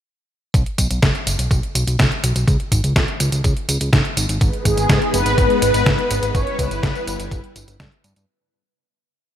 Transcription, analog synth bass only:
0, 0, Header, 1, 2, 480
1, 0, Start_track
1, 0, Key_signature, 5, "major"
1, 0, Tempo, 483871
1, 538, Time_signature, 4, 2, 24, 8
1, 9278, End_track
2, 0, Start_track
2, 0, Title_t, "Analog synth bass"
2, 0, Program_c, 0, 38
2, 537, Note_on_c, 0, 35, 103
2, 630, Note_off_c, 0, 35, 0
2, 776, Note_on_c, 0, 35, 93
2, 869, Note_off_c, 0, 35, 0
2, 898, Note_on_c, 0, 35, 79
2, 990, Note_off_c, 0, 35, 0
2, 1017, Note_on_c, 0, 30, 103
2, 1110, Note_off_c, 0, 30, 0
2, 1257, Note_on_c, 0, 30, 95
2, 1350, Note_off_c, 0, 30, 0
2, 1377, Note_on_c, 0, 35, 82
2, 1470, Note_off_c, 0, 35, 0
2, 1496, Note_on_c, 0, 35, 104
2, 1589, Note_off_c, 0, 35, 0
2, 1737, Note_on_c, 0, 35, 95
2, 1830, Note_off_c, 0, 35, 0
2, 1858, Note_on_c, 0, 35, 86
2, 1950, Note_off_c, 0, 35, 0
2, 1976, Note_on_c, 0, 35, 100
2, 2069, Note_off_c, 0, 35, 0
2, 2219, Note_on_c, 0, 35, 92
2, 2311, Note_off_c, 0, 35, 0
2, 2338, Note_on_c, 0, 35, 81
2, 2430, Note_off_c, 0, 35, 0
2, 2456, Note_on_c, 0, 37, 102
2, 2549, Note_off_c, 0, 37, 0
2, 2695, Note_on_c, 0, 32, 94
2, 2789, Note_off_c, 0, 32, 0
2, 2818, Note_on_c, 0, 37, 80
2, 2910, Note_off_c, 0, 37, 0
2, 2936, Note_on_c, 0, 37, 102
2, 3029, Note_off_c, 0, 37, 0
2, 3177, Note_on_c, 0, 37, 97
2, 3270, Note_off_c, 0, 37, 0
2, 3297, Note_on_c, 0, 37, 82
2, 3390, Note_off_c, 0, 37, 0
2, 3415, Note_on_c, 0, 37, 98
2, 3509, Note_off_c, 0, 37, 0
2, 3657, Note_on_c, 0, 37, 94
2, 3750, Note_off_c, 0, 37, 0
2, 3778, Note_on_c, 0, 37, 86
2, 3870, Note_off_c, 0, 37, 0
2, 3896, Note_on_c, 0, 32, 102
2, 3989, Note_off_c, 0, 32, 0
2, 4137, Note_on_c, 0, 32, 92
2, 4230, Note_off_c, 0, 32, 0
2, 4257, Note_on_c, 0, 32, 78
2, 4350, Note_off_c, 0, 32, 0
2, 4376, Note_on_c, 0, 32, 99
2, 4469, Note_off_c, 0, 32, 0
2, 4616, Note_on_c, 0, 32, 95
2, 4709, Note_off_c, 0, 32, 0
2, 4736, Note_on_c, 0, 32, 79
2, 4829, Note_off_c, 0, 32, 0
2, 4856, Note_on_c, 0, 44, 98
2, 4949, Note_off_c, 0, 44, 0
2, 5095, Note_on_c, 0, 30, 97
2, 5189, Note_off_c, 0, 30, 0
2, 5216, Note_on_c, 0, 32, 82
2, 5309, Note_off_c, 0, 32, 0
2, 5336, Note_on_c, 0, 32, 102
2, 5429, Note_off_c, 0, 32, 0
2, 5577, Note_on_c, 0, 32, 94
2, 5670, Note_off_c, 0, 32, 0
2, 5697, Note_on_c, 0, 32, 83
2, 5790, Note_off_c, 0, 32, 0
2, 5816, Note_on_c, 0, 32, 104
2, 5909, Note_off_c, 0, 32, 0
2, 6058, Note_on_c, 0, 32, 94
2, 6150, Note_off_c, 0, 32, 0
2, 6178, Note_on_c, 0, 32, 81
2, 6270, Note_off_c, 0, 32, 0
2, 6296, Note_on_c, 0, 31, 100
2, 6389, Note_off_c, 0, 31, 0
2, 6536, Note_on_c, 0, 37, 97
2, 6629, Note_off_c, 0, 37, 0
2, 6659, Note_on_c, 0, 31, 79
2, 6751, Note_off_c, 0, 31, 0
2, 6777, Note_on_c, 0, 31, 104
2, 6870, Note_off_c, 0, 31, 0
2, 7019, Note_on_c, 0, 31, 100
2, 7110, Note_off_c, 0, 31, 0
2, 7139, Note_on_c, 0, 31, 84
2, 7231, Note_off_c, 0, 31, 0
2, 7256, Note_on_c, 0, 31, 103
2, 7349, Note_off_c, 0, 31, 0
2, 7498, Note_on_c, 0, 31, 96
2, 7590, Note_off_c, 0, 31, 0
2, 7618, Note_on_c, 0, 31, 85
2, 7710, Note_off_c, 0, 31, 0
2, 7737, Note_on_c, 0, 43, 100
2, 7830, Note_off_c, 0, 43, 0
2, 7978, Note_on_c, 0, 43, 95
2, 8070, Note_off_c, 0, 43, 0
2, 8099, Note_on_c, 0, 43, 82
2, 8191, Note_off_c, 0, 43, 0
2, 9278, End_track
0, 0, End_of_file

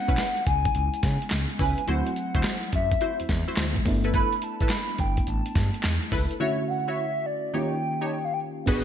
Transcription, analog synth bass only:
0, 0, Header, 1, 2, 480
1, 0, Start_track
1, 0, Tempo, 566038
1, 1593, Time_signature, 4, 2, 24, 8
1, 7498, End_track
2, 0, Start_track
2, 0, Title_t, "Analog synth bass"
2, 0, Program_c, 0, 38
2, 74, Note_on_c, 0, 35, 94
2, 135, Note_off_c, 0, 35, 0
2, 396, Note_on_c, 0, 37, 88
2, 579, Note_off_c, 0, 37, 0
2, 640, Note_on_c, 0, 37, 95
2, 760, Note_off_c, 0, 37, 0
2, 877, Note_on_c, 0, 49, 103
2, 998, Note_off_c, 0, 49, 0
2, 1121, Note_on_c, 0, 37, 87
2, 1241, Note_off_c, 0, 37, 0
2, 1354, Note_on_c, 0, 37, 93
2, 1477, Note_off_c, 0, 37, 0
2, 1598, Note_on_c, 0, 38, 96
2, 1718, Note_off_c, 0, 38, 0
2, 1993, Note_on_c, 0, 38, 96
2, 2055, Note_off_c, 0, 38, 0
2, 2318, Note_on_c, 0, 42, 88
2, 2500, Note_off_c, 0, 42, 0
2, 2716, Note_on_c, 0, 40, 52
2, 2747, Note_off_c, 0, 40, 0
2, 2796, Note_on_c, 0, 40, 100
2, 2918, Note_off_c, 0, 40, 0
2, 3031, Note_on_c, 0, 38, 88
2, 3216, Note_off_c, 0, 38, 0
2, 3272, Note_on_c, 0, 31, 100
2, 3580, Note_off_c, 0, 31, 0
2, 3911, Note_on_c, 0, 33, 87
2, 3974, Note_off_c, 0, 33, 0
2, 4233, Note_on_c, 0, 31, 100
2, 4417, Note_off_c, 0, 31, 0
2, 4477, Note_on_c, 0, 33, 96
2, 4598, Note_off_c, 0, 33, 0
2, 4711, Note_on_c, 0, 43, 110
2, 4835, Note_off_c, 0, 43, 0
2, 4960, Note_on_c, 0, 40, 92
2, 5080, Note_off_c, 0, 40, 0
2, 5191, Note_on_c, 0, 37, 95
2, 5315, Note_off_c, 0, 37, 0
2, 7357, Note_on_c, 0, 32, 116
2, 7498, Note_off_c, 0, 32, 0
2, 7498, End_track
0, 0, End_of_file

